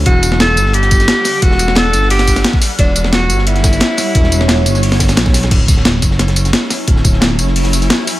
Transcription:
<<
  \new Staff \with { instrumentName = "Tenor saxophone" } { \time 4/4 \key d \major \tempo 4 = 176 fis'4 a'4 g'2 | fis'4 a'4 g'4 r4 | d'4 fis'4 e'2~ | e'2. r4 |
r1 | r1 | }
  \new Staff \with { instrumentName = "Ambient pad" } { \time 4/4 \key d \major << { <g fis''>1~ | <g fis''>1~ | <g fis''>1~ | <g fis''>1 |
<fis e'>1~ | <fis e'>1 | } \\ { d1~ | d1 | cis''1~ | cis''1 |
cis'1~ | cis'1 | } >> }
  \new Staff \with { instrumentName = "Analog synth bass" } { \clef bass \time 4/4 \key d \major e,,4. g,,4. r4 | e,,4. g,,4. r4 | e,,4. g,,4. r4 | e,,4. g,,4. b,,8. b,,16 |
d,,4. fis,,4. r4 | d,,4. fis,,4. r4 | }
  \new DrumStaff \with { instrumentName = "Drums" } \drummode { \time 4/4 <hh bd cymr>8 <hh cymr tamb>16 sn16 <hh cymr sn>8 <hh cymr tamb>16 sn16 <hh cymr>16 <hh sn>16 <hh bd cymr tamb>16 <hh sn tamb>16 <hh cymr sn>16 sn16 <hho cymr sn tamb>8 | <hh bd cymr>16 sn16 <hh cymr tamb>16 sn16 <hh cymr sn>16 cymr16 <hh cymr tamb>16 sn16 <hh hho>16 <hh sn>16 <hh bd cymr tamb>16 <hh sn tamb>16 <hh cymr sn>16 <bd sn>16 <hho cymr sn tamb>8 | <hh bd cymr>8 <hh cymr tamb>16 sn16 <hh cymr sn>8 <hh cymr tamb>16 sn16 <hh cymr>16 <hh sn>16 <hh bd cymr sn tamb>16 <hh sn tamb>16 <hh cymr sn>16 sn16 <hho cymr sn tamb>8 | <hh bd cymr>16 sn16 <hh cymr tamb>16 sn16 <hh cymr sn>16 cymr16 <hh cymr tamb>16 <sn tamb>16 <hh hho>16 <hh sn>16 <hh bd cymr sn tamb>16 <hh cymr sn tamb>16 <hh cymr sn>16 <bd cymr sn>16 <hho cymr sn tamb>16 <hh cymr sn>16 |
<cymc hh bd cymr>8 <hh bd cymr tamb>16 sn16 <hh cymr sn>8 <hh bd cymr tamb>16 sn16 <hh cymr sn>16 <hh sn>16 <hh cymr tamb>16 <hh sn tamb>16 <hh cymr sn>16 sn16 <hho cymr sn tamb>8 | <hh bd cymr>16 sn16 <hh bd cymr tamb>16 sn16 <hh cymr sn>16 cymr16 <hh cymr tamb>16 sn16 <hh hho>16 <hh sn>16 <hh cymr tamb>16 <hh sn tamb>16 <hh cymr sn>16 sn16 <hho cymr sn tamb>8 | }
>>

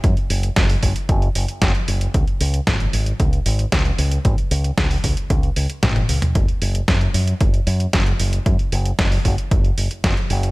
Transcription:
<<
  \new Staff \with { instrumentName = "Fingered electric bass" } { \clef bass \time 4/4 \key cis \minor \tempo 4 = 114 fis,8 fis,,8 fis,,8 fis,,8 fis,,8 fis,,8 fis,,8 fis,,8 | cis,8 cis,8 gis,,8 gis,,8 cis,8 gis,,8 cis,8 cis,8 | gis,,8 cis,8 cis,8 cis,8 cis,8 cis,8 gis,,8 cis,8 | fis,,8 fis,,8 fis,8 fis,8 fis,,8 fis,8 fis,,8 fis,,8 |
fis,8 fis,,8 fis,,8 fis,,8 fis,,8 fis,,8 fis,,8 fis,,8 | }
  \new DrumStaff \with { instrumentName = "Drums" } \drummode { \time 4/4 <hh bd>16 hh16 hho16 hh16 <hh bd sn>16 hho16 <hho bd>16 hh16 <hh bd>16 hh16 hho16 hh16 <hh bd sn>16 hh16 hho16 hh16 | <hh bd>16 hh16 hho16 hh16 <hh bd sn>16 hh16 hho16 hh16 <hh bd>16 hh16 hho16 hh16 <hh bd sn>16 hh16 hho16 hh16 | <hh bd>16 hh16 hho16 hh16 <hh bd sn>16 hho16 <hho bd>16 hh16 <hh bd>16 hh16 hho16 hh16 <hh bd sn tommh>16 <hh tommh>16 hho16 <hh toml>16 | <hh bd>16 hh16 hho16 hh16 <hh bd sn>16 hh16 hho16 hh16 <hh bd>16 hh16 hho16 hh16 <hh bd sn>16 hh16 hho16 hh16 |
<hh bd>16 hh16 hho16 hh16 <hh bd sn>16 hho16 <hho bd>16 hh16 <hh bd>16 hh16 hho16 hh16 <hh bd sn>16 hh16 hho16 hh16 | }
>>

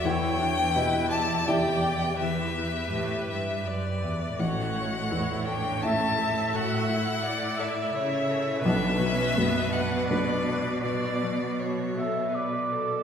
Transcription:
<<
  \new Staff \with { instrumentName = "Violin" } { \time 3/4 \key b \minor \tempo 4 = 83 g''4. a''8 g''4 | e''4. e''8 d''4 | fis''4. g''8 a''4 | fis''4. d''8 cis''4 |
e''4. fis''8 d''4 | d''4 cis''4 r4 | }
  \new Staff \with { instrumentName = "Oboe" } { \time 3/4 \key b \minor r2. | r2. | r2. | r2. |
r2. | r4. e''8 d''4 | }
  \new Staff \with { instrumentName = "Harp" } { \time 3/4 \key b \minor <e d'' e''>8 e'8 g'8 e''8 d'''8 e''8 | e8 e'8 g'8 e''8 d'''8 e''8 | a,8 a8 cis'''8 a'8 e''8 a'8 | a,8 a4 a'8 e''8 a'8 |
b,8 fis8 b'8 fis'4 fis'8 | b,8 fis4 fis'4 fis'8 | }
  \new Staff \with { instrumentName = "Viola section" } { \time 3/4 \key b \minor << { cis''4 b'8 d''4. | b'2~ b'8 r8 | cis''4 cis''4 e''4~ | e''4 d''8 e''8 e''4 |
b'2. | d''4 fis'8 a'8 b'8 a'8 | } \\ { e'8 d'8 e'4 g'4 | g'2~ g'8 r8 | fis'4 e'8 d'8 cis'8 e'8 | fis'8 e'2~ e'8 |
d'8 cis'8 b8 d'4. | fis'4 r2 | } >> }
  \new Staff \with { instrumentName = "Felt piano" } { \time 3/4 \key b \minor e,4 b,4 <e' g' d''>4~ | <e' g' d''>2. | a,,4 e,4 <a e' e''>4~ | <a e' e''>2. |
b,,4 fis,4 <fis d' b'>4~ | <fis d' b'>2. | }
  \new Staff \with { instrumentName = "Cello section" } { \clef bass \time 3/4 \key b \minor e,2.~ | e,4 a,8 g,8 fis,8 e,8 | a,2.~ | a,2 cis4 |
b,2.~ | b,2~ b,8 r8 | }
>>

